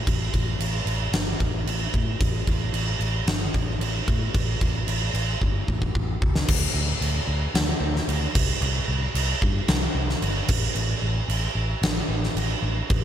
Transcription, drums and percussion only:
0.07 kick loud
0.07 crash medium
0.34 kick medium
0.34 crash medium
0.60 crash medium
0.87 crash medium
1.13 snare loud
1.13 crash medium
1.40 kick medium
1.40 crash medium
1.67 crash medium
1.94 kick medium
1.94 crash soft
2.21 kick loud
2.21 crash medium
2.47 kick medium
2.47 crash medium
2.74 crash medium
3.01 crash medium
3.27 snare loud
3.27 crash medium
3.54 kick medium
3.54 crash soft
3.81 crash medium
4.08 kick medium
4.08 crash medium
4.35 kick loud
4.35 crash medium
4.61 kick medium
4.61 crash medium
4.88 crash medium
5.15 crash medium
5.42 kick medium
5.68 kick medium
5.82 kick medium
5.95 kick medium
6.22 kick medium
6.35 snare medium
6.48 kick loud
6.48 crash loud
6.48 crash medium
7.02 crash medium
7.55 snare loud
7.55 crash medium
7.96 snare soft
8.09 crash medium
8.35 kick loud
8.35 crash loud
8.62 crash medium
9.15 crash medium
9.42 kick medium
9.68 snare loud
9.68 crash medium
10.10 snare soft
10.22 crash medium
10.48 kick loud
10.48 crash loud
10.76 crash medium
11.30 crash medium
11.83 snare loud
11.83 crash medium
12.24 snare soft
12.37 crash medium
12.90 kick loud
12.90 crash medium

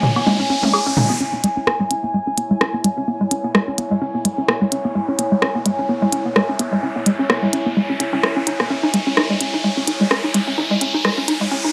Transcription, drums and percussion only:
0.03 mid tom medium
0.16 high woodblock soft
0.27 high tom soft
0.63 high tom soft
0.74 high woodblock medium
0.97 mid tom medium
0.97 high tom soft
1.44 closed hi-hat medium
1.67 cross-stick medium
1.91 closed hi-hat medium
2.38 closed hi-hat medium
2.61 cross-stick medium
2.84 closed hi-hat medium
3.31 closed hi-hat medium
3.55 cross-stick medium
3.78 closed hi-hat medium
4.25 closed hi-hat medium
4.48 cross-stick medium
4.72 closed hi-hat medium
5.19 closed hi-hat medium
5.42 cross-stick medium
5.66 closed hi-hat medium
6.12 closed hi-hat loud
6.36 cross-stick medium
6.59 closed hi-hat medium
7.06 closed hi-hat medium
7.30 cross-stick medium
7.53 closed hi-hat medium
8.00 closed hi-hat loud
8.23 cross-stick medium
8.47 closed hi-hat medium
8.60 cross-stick medium
8.94 closed hi-hat medium
9.17 cross-stick medium
9.41 closed hi-hat medium
9.88 closed hi-hat medium
10.11 cross-stick medium
10.34 closed hi-hat medium
10.81 closed hi-hat medium
11.05 cross-stick medium
11.28 closed hi-hat medium

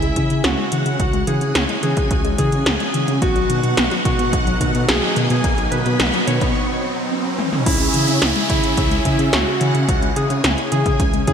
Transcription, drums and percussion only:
0.02 closed hi-hat soft
0.16 kick medium
0.16 closed hi-hat medium
0.30 closed hi-hat medium
0.44 snare loud
0.44 closed hi-hat medium
0.72 closed hi-hat medium
0.86 closed hi-hat medium
1.00 kick loud
1.00 closed hi-hat medium
1.13 closed hi-hat soft
1.27 closed hi-hat medium
1.41 closed hi-hat medium
1.55 snare loud
1.55 closed hi-hat medium
1.69 closed hi-hat soft
1.83 closed hi-hat medium
1.97 kick loud
1.97 closed hi-hat medium
2.11 kick loud
2.11 closed hi-hat medium
2.25 closed hi-hat soft
2.38 kick medium
2.38 closed hi-hat medium
2.52 closed hi-hat medium
2.66 snare loud
2.66 closed hi-hat medium
2.80 closed hi-hat soft
2.94 closed hi-hat medium
3.08 closed hi-hat medium
3.22 kick loud
3.22 closed hi-hat medium
3.36 closed hi-hat soft
3.50 closed hi-hat medium
3.63 closed hi-hat medium
3.77 snare loud
3.77 closed hi-hat medium
3.91 closed hi-hat soft
4.05 kick loud
4.05 closed hi-hat medium
4.19 closed hi-hat medium
4.33 kick loud
4.33 closed hi-hat medium
4.47 closed hi-hat soft
4.61 kick medium
4.61 closed hi-hat medium
4.75 closed hi-hat medium
4.89 snare loud
4.89 closed hi-hat medium
5.16 closed hi-hat medium
5.30 closed hi-hat medium
5.44 kick loud
5.44 closed hi-hat medium
5.58 closed hi-hat soft
5.72 closed hi-hat medium
5.86 closed hi-hat medium
6.00 snare loud
6.00 closed hi-hat medium
6.14 closed hi-hat soft
6.27 closed hi-hat medium
6.41 kick loud
6.41 closed hi-hat medium
7.39 high tom medium
7.53 mid tom medium
7.66 kick loud
7.66 closed hi-hat medium
7.66 crash loud
7.80 closed hi-hat soft
7.94 closed hi-hat medium
8.08 closed hi-hat medium
8.22 snare loud
8.22 closed hi-hat medium
8.36 closed hi-hat soft
8.50 kick loud
8.50 closed hi-hat medium
8.63 closed hi-hat medium
8.77 kick loud
8.77 closed hi-hat medium
8.91 closed hi-hat soft
9.05 kick medium
9.05 closed hi-hat medium
9.19 closed hi-hat medium
9.33 snare loud
9.33 closed hi-hat medium
9.61 closed hi-hat medium
9.75 closed hi-hat medium
9.89 kick loud
9.89 closed hi-hat medium
10.02 closed hi-hat soft
10.16 closed hi-hat medium
10.30 closed hi-hat medium
10.44 snare loud
10.44 closed hi-hat medium
10.58 closed hi-hat soft
10.72 closed hi-hat medium
10.86 kick loud
10.86 closed hi-hat medium
11.00 kick loud
11.00 closed hi-hat medium
11.14 closed hi-hat soft
11.27 kick medium
11.27 closed hi-hat medium

